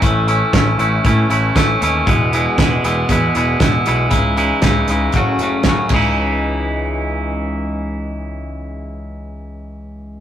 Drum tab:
CC |--------|--------|-------x|--------|
HH |xxxxxxxx|xxxxxxxx|xxxxxxx-|--------|
SD |--o---o-|--o---o-|--o---o-|--------|
BD |o-o-o-o-|o-o-o-o-|o-o-o-oo|--------|

CC |--------|
HH |--------|
SD |--------|
BD |--------|